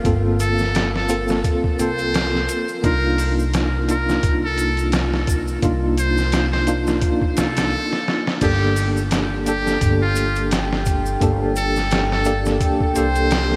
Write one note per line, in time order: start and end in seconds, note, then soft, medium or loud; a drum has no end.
0.00 0.04 A#3 medium
0.00 7.73 A#3 medium
0.00 1.05 A#3 medium
0.00 0.05 C4 medium
0.00 0.06 F4 medium
0.00 0.06 A4 medium
0.05 1.41 G1 medium
0.05 1.06 C4 medium
0.05 1.06 F4 medium
0.05 1.06 A4 medium
0.05 kick loud
0.05 closed hi-hat medium
0.05 shaker soft
0.40 0.89 A4 medium
0.40 closed hi-hat medium
0.40 shaker medium
0.58 snare soft
0.58 shaker soft
0.74 snare loud
0.74 closed hi-hat medium
0.74 shaker soft
0.96 1.26 A4 medium
0.96 snare medium
1.09 1.75 A#3 medium
1.09 1.75 C4 medium
1.09 1.76 F4 medium
1.09 1.76 A4 loud
1.09 closed hi-hat medium
1.09 shaker medium
1.28 snare medium
1.28 shaker soft
1.44 kick loud
1.44 closed hi-hat medium
1.44 shaker soft
1.64 kick medium
1.78 2.46 C2 medium
1.78 2.80 A#3 medium
1.78 2.80 C4 medium
1.78 2.81 F4 medium
1.78 2.81 A4 medium
1.78 2.73 C5 loud
1.78 closed hi-hat medium
1.78 shaker medium
1.98 closed hi-hat soft
1.98 shaker soft
2.14 snare loud
2.14 closed hi-hat medium
2.14 shaker soft
2.35 snare soft
2.49 closed hi-hat medium
2.49 shaker medium
2.68 shaker soft
2.82 4.20 C2 loud
2.82 3.84 A#3 medium
2.82 3.85 D4 medium
2.82 3.85 D#4 medium
2.82 3.85 F4 medium
2.82 3.33 A#4 loud
2.82 kick loud
2.82 closed hi-hat medium
2.82 shaker soft
3.18 open hi-hat medium
3.18 shaker medium
3.39 shaker soft
3.54 snare loud
3.54 closed hi-hat medium
3.54 shaker soft
3.88 5.59 A#3 medium
3.88 5.60 D4 medium
3.88 5.60 D#4 medium
3.88 5.60 F4 medium
3.88 4.38 A#4 medium
3.88 closed hi-hat medium
3.88 shaker medium
4.09 snare soft
4.09 shaker soft
4.23 5.60 C2 medium
4.23 kick loud
4.23 closed hi-hat medium
4.23 shaker soft
4.44 4.89 A4 medium
4.58 closed hi-hat medium
4.58 shaker medium
4.77 closed hi-hat soft
4.77 shaker soft
4.92 snare loud
4.92 closed hi-hat medium
4.92 shaker soft
5.14 snare medium
5.27 kick medium
5.27 closed hi-hat medium
5.27 shaker medium
5.48 shaker medium
5.62 6.99 C2 loud
5.62 6.63 A#3 medium
5.62 6.64 D4 medium
5.62 6.64 D#4 medium
5.62 6.65 F4 medium
5.62 kick loud
5.62 closed hi-hat medium
5.62 shaker soft
5.97 6.47 C5 loud
5.97 closed hi-hat medium
5.97 shaker medium
6.17 snare soft
6.17 shaker soft
6.32 snare loud
6.32 closed hi-hat medium
6.32 shaker soft
6.53 6.83 C5 medium
6.53 snare medium
6.67 7.34 A#3 medium
6.67 7.34 D4 medium
6.67 7.34 D#4 medium
6.67 7.34 F4 loud
6.67 closed hi-hat medium
6.67 shaker medium
6.87 snare medium
6.87 shaker soft
7.02 kick loud
7.02 closed hi-hat medium
7.02 shaker soft
7.22 kick medium
7.37 7.72 C2 medium
7.37 8.30 A4 loud
7.37 snare medium
7.37 closed hi-hat medium
7.37 shaker medium
7.57 snare medium
7.57 closed hi-hat medium
7.57 shaker soft
7.93 snare medium
8.08 snare medium
8.27 snare medium
8.41 9.78 G1 medium
8.41 9.43 A#3 medium
8.41 9.43 D4 medium
8.41 9.43 G4 medium
8.41 8.91 G4 medium
8.41 13.56 A4 medium
8.41 9.44 A4 medium
8.41 13.56 G5 medium
8.41 kick loud
8.41 closed hi-hat medium
8.41 crash medium
8.41 shaker soft
8.76 open hi-hat medium
8.76 shaker medium
8.97 shaker soft
9.11 snare loud
9.11 closed hi-hat medium
9.11 shaker soft
9.46 11.17 A#3 medium
9.46 11.18 D4 medium
9.46 9.96 G4 medium
9.46 11.18 G4 medium
9.46 11.19 A4 medium
9.46 closed hi-hat medium
9.46 shaker medium
9.67 snare soft
9.67 shaker medium
9.81 11.18 G1 medium
9.81 kick loud
9.81 closed hi-hat medium
9.81 shaker soft
10.02 10.47 F4 medium
10.16 closed hi-hat medium
10.16 shaker medium
10.36 closed hi-hat soft
10.36 shaker medium
10.51 snare loud
10.51 closed hi-hat medium
10.51 shaker soft
10.73 snare medium
10.86 kick medium
10.86 closed hi-hat medium
10.86 shaker medium
11.06 shaker medium
11.20 12.58 G1 loud
11.20 12.22 A#3 medium
11.20 12.22 D4 medium
11.20 12.23 G4 medium
11.20 12.23 A4 medium
11.20 kick loud
11.20 closed hi-hat medium
11.20 shaker soft
11.56 12.05 A4 loud
11.56 closed hi-hat medium
11.56 shaker medium
11.76 snare soft
11.76 shaker soft
11.91 snare loud
11.91 closed hi-hat medium
11.91 shaker soft
12.11 12.42 A4 medium
12.11 snare medium
12.25 12.92 A#3 loud
12.25 12.92 D4 medium
12.25 12.92 G4 medium
12.25 12.93 A4 loud
12.25 closed hi-hat medium
12.25 shaker medium
12.45 snare medium
12.45 shaker medium
12.61 kick loud
12.61 closed hi-hat medium
12.61 shaker soft
12.80 kick medium
12.95 13.56 C2 medium
12.95 13.56 A#3 medium
12.95 13.56 D4 medium
12.95 13.56 G4 medium
12.95 13.56 A4 medium
12.95 13.56 C5 loud
12.95 closed hi-hat medium
12.95 shaker medium
13.15 closed hi-hat soft
13.15 shaker medium
13.31 snare loud
13.31 closed hi-hat medium
13.31 shaker soft
13.52 snare soft